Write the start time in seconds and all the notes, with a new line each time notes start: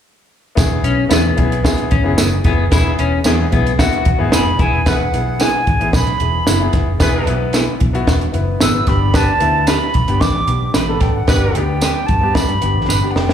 0.55 E1 B3 E4 G#4, kick, snare, closed hi-hat, tambourine
0.84 B1 C#4, closed hi-hat
1.09 E2 B3 E4 G#4, snare, closed hi-hat, tambourine
1.36 B1 B3 E4 G#4, kick, closed hi-hat
1.52 closed hi-hat
1.63 B3 E4 G#4, kick, snare, closed hi-hat, tambourine
1.77 closed hi-hat
1.91 G#1 C#4, kick, closed hi-hat
2.04 F#1 B3 E4 G#4
2.17 F#1 B3 E4 G#4, snare, closed hi-hat, tambourine
2.44 F1 B3 E4 G#4, kick, snare, closed hi-hat
2.71 E1 B3 E4 G#4, kick, snare, closed hi-hat, tambourine
2.99 E1 C#4, closed hi-hat
3.24 E2 B3 E4 G#4, snare, closed hi-hat, tambourine
3.51 B1 B3 E4 G#4, kick, closed hi-hat
3.67 closed hi-hat
3.78 B3 E4 F#4, kick, snare, closed hi-hat, tambourine
3.92 closed hi-hat
4.05 E1 F#5, kick, closed hi-hat
4.18 G#1 B3 E4 G#4
4.32 F1 B3 E4 G#4 G#5 B5, snare, closed hi-hat, tambourine
4.58 E1 B3 E4 G#4 G#5 B5, kick, closed hi-hat
4.85 E1 B3 E4 G#4 B4 F#5, kick, snare, closed hi-hat, tambourine
5.13 B1 B3 E4 G#4, closed hi-hat
5.39 B3 E4 G#4 G#5, snare, closed hi-hat, tambourine
5.67 G#1, kick, closed hi-hat
5.80 A1 B3 E4 G#4, closed hi-hat
5.93 B1 B5, kick, snare, closed hi-hat, tambourine
6.07 closed hi-hat
6.20 E1 B3 E4 G#4, closed hi-hat
6.47 F#1 B3 E4 G#4, snare, closed hi-hat, tambourine
6.59 B3 E4 G#4
6.73 F1, kick, snare, closed hi-hat
6.99 E1 B3 E4 G#4 B4, kick, snare, closed hi-hat, tambourine
7.26 B1 B3 E4 B4, closed hi-hat
7.53 B3 E4 G#4, snare, closed hi-hat, tambourine
7.80 B1, kick, closed hi-hat
7.93 B3 E4 F#4, closed hi-hat
8.07 E1, kick, snare, closed hi-hat, tambourine
8.21 closed hi-hat
8.32 F#1 B3 E4 B4, closed hi-hat
8.61 G#1 B3 E4 G#4 E6, snare, closed hi-hat, tambourine
8.73 B3 E4 B4
8.87 G1 B3 D4 G4 B5, kick, snare, closed hi-hat
9.14 B3 D4 G4 B4 A5, kick, snare, closed hi-hat, tambourine
9.40 D2 B3 D4 E4, closed hi-hat
9.67 D4 G4 B4 B5, snare, closed hi-hat, tambourine
9.94 B1, kick, closed hi-hat
10.08 G1 B3 D4 G4, closed hi-hat
10.21 A1 D6, kick, snare, closed hi-hat, tambourine
10.47 B1 B3 D4 G4, closed hi-hat
10.74 A1 D4 G4 B4 B5, snare, closed hi-hat, tambourine
10.87 B3 D4 A4
11.00 G#1 G5, kick, snare, closed hi-hat
11.15 F#5
11.28 G1 B3 D4 G4 B4, kick, snare, closed hi-hat, tambourine
11.54 D2 B3 D4 G4 G5, closed hi-hat
11.81 D4 G4 B4, snare, closed hi-hat, tambourine
12.06 G2 A5, kick, closed hi-hat
12.21 G2 B3 D4 G4
12.35 B5, kick, snare, closed hi-hat, tambourine
12.48 G2, closed hi-hat
12.62 G1 B3 D4 G4, closed hi-hat
12.76 A1
12.88 G1 D4 G4 B4 B5, snare, tambourine
13.02 B3 D4 G4
13.11 F#5
13.16 F1 G5, snare
13.29 snare